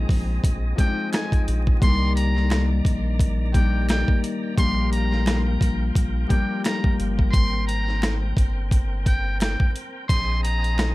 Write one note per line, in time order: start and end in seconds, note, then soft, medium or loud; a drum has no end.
0.00 0.74 F3 medium
0.00 0.76 G#3 medium
0.00 1.23 A#3 medium
0.00 0.78 C4 medium
0.00 1.79 C4 medium
0.00 0.86 D#4 medium
0.00 1.79 G#4 medium
0.00 1.79 D#5 medium
0.09 0.39 A#1 medium
0.09 kick loud
0.09 open hi-hat medium
0.44 0.74 A#1 medium
0.44 kick loud
0.44 closed hi-hat loud
0.76 1.87 F3 medium
0.76 1.87 G#3 medium
0.76 3.79 C4 medium
0.76 1.09 G5 medium
0.76 kick loud
0.76 closed hi-hat medium
0.80 0.87 D4 medium
0.87 1.85 D#4 medium
1.12 1.43 G#5 medium
1.12 finger snap medium
1.12 cross-stick medium
1.12 snare loud
1.12 closed hi-hat medium
1.32 kick medium
1.32 closed hi-hat medium
1.48 1.78 A#1 loud
1.48 closed hi-hat medium
1.67 kick medium
1.79 2.81 C2 loud
1.79 3.59 D3 medium
1.79 4.55 D#3 medium
1.79 3.52 G3 medium
1.79 3.54 A#3 medium
1.79 4.55 D5 medium
1.79 4.55 A#5 medium
1.79 2.13 C6 loud
1.79 kick loud
1.79 closed hi-hat medium
1.84 3.51 D#3 medium
1.84 3.56 D4 medium
2.16 2.67 A#5 medium
2.16 closed hi-hat medium
2.37 snare soft
2.50 finger snap medium
2.50 cross-stick medium
2.50 snare loud
2.50 closed hi-hat medium
2.85 4.04 A#1 loud
2.85 kick loud
2.85 closed hi-hat medium
3.19 kick loud
3.19 closed hi-hat loud
3.52 4.62 D#3 medium
3.52 4.56 G3 medium
3.52 4.58 A#3 medium
3.52 3.85 G5 medium
3.52 kick medium
3.52 closed hi-hat medium
3.56 4.60 D4 medium
3.89 4.20 G5 medium
3.89 finger snap medium
3.89 cross-stick medium
3.89 snare loud
3.89 closed hi-hat medium
4.08 kick loud
4.24 closed hi-hat medium
4.56 5.57 A#1 loud
4.56 6.26 F3 medium
4.56 6.27 G3 medium
4.56 6.30 A#3 medium
4.56 7.31 F4 medium
4.56 10.05 A#4 medium
4.56 10.05 G5 medium
4.56 4.89 C6 loud
4.56 kick loud
4.56 closed hi-hat medium
4.60 6.31 D4 medium
4.91 5.43 A#5 medium
4.91 closed hi-hat medium
5.12 snare soft
5.26 finger snap medium
5.26 cross-stick medium
5.26 snare loud
5.26 closed hi-hat medium
5.61 5.91 A#1 medium
5.61 kick loud
5.61 closed hi-hat medium
5.95 6.26 A#1 loud
5.95 kick loud
5.95 closed hi-hat loud
6.27 7.38 F3 medium
6.27 7.38 G3 medium
6.27 9.52 A#3 medium
6.27 6.61 G5 medium
6.27 kick loud
6.27 closed hi-hat medium
6.32 9.11 D4 loud
6.64 6.95 A#5 medium
6.64 finger snap medium
6.64 cross-stick medium
6.64 snare loud
6.64 closed hi-hat loud
6.84 kick medium
7.00 7.29 G1 medium
7.00 closed hi-hat medium
7.19 kick medium
7.32 8.33 G#1 loud
7.32 10.07 C4 medium
7.32 7.63 C6 loud
7.32 kick loud
7.32 closed hi-hat medium
7.67 8.18 A#5 medium
7.67 closed hi-hat medium
7.88 snare soft
8.02 finger snap medium
8.02 cross-stick medium
8.02 snare loud
8.02 closed hi-hat medium
8.37 9.56 G1 loud
8.37 kick loud
8.37 closed hi-hat medium
8.71 kick loud
8.71 closed hi-hat loud
9.06 9.37 G5 medium
9.06 kick medium
9.06 closed hi-hat medium
9.40 9.71 G5 medium
9.40 finger snap medium
9.40 cross-stick medium
9.40 snare loud
9.40 closed hi-hat medium
9.60 kick medium
9.76 closed hi-hat medium
10.09 10.95 A#1 loud
10.09 10.95 C4 medium
10.09 10.95 G#4 medium
10.09 10.95 D#5 medium
10.09 10.40 C6 loud
10.09 kick loud
10.09 closed hi-hat medium
10.43 10.94 A#5 loud
10.43 closed hi-hat medium
10.64 closed hi-hat medium
10.78 finger snap medium
10.78 cross-stick medium
10.78 snare loud
10.78 closed hi-hat medium